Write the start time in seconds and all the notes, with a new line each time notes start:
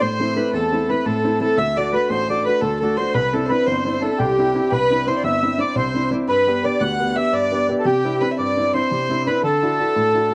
0.00 A2 C5
0.20 A3 C4 E4
0.36 A3 C4 E4 B4
0.53 E2 A4
0.72 A3 C4 E4
0.89 A3 C4 E4 B4
1.06 A2 A4
1.24 A3 C4 E4
1.41 A3 C4 E4 A4
1.57 D2 E5
1.76 A3 D4 F#4 D5
1.93 A3 D4 F#4 B4
2.09 A1 C5
2.30 A3 D4 F#4 D5
2.45 A3 D4 F#4 B4
2.61 D2 A4
2.80 A3 D4 F#4 A4
2.97 A3 D4 F#4 C5
3.14 C2 B4
3.33 C4 D4 E4 A4
3.46 B4 C5
3.50 C4 D4 E4
3.66 G1 C5
3.85 C4 D4 E4 C5
4.02 C4 D4 E4 A4
4.12 A4
4.18 C2 G4
4.38 C4 D4 E4
4.55 C4 D4 E4
4.72 C2 B4
4.91 C4 D4 E4
5.07 C4 D4 E4 C5
5.17 D5
5.23 G1 E5
5.43 C4 D4 E4
5.58 C4 D4 E4 D5
5.75 C2 C5
5.94 C4 D4 E4
6.11 C4 D4 E4
6.28 G2 B4
6.47 B3 D4 G4
6.63 B3 D4 G4 D5
6.80 D2 F#5
6.99 B3 D4 G4
7.13 B3 D4 G4 E5 F#5
7.18 E5
7.32 G2 D5
7.52 B3 D4 G4
7.68 B3 D4 G4
7.79 A4
7.85 C3 G4
8.05 C4 D4 E4
8.20 C4 D4 E4 B4
8.31 E5
8.37 G2 D5
8.57 C4 D4 E4
8.73 C4 D4 E4 C5
8.91 C3
9.09 C4 D4 E4
9.27 C4 D4 E4 B4
9.43 D3 A4
9.63 D4 E4 F#4
9.79 D4 E4 F#4
9.96 A2
10.14 D4 E4 F#4
10.31 D4 E4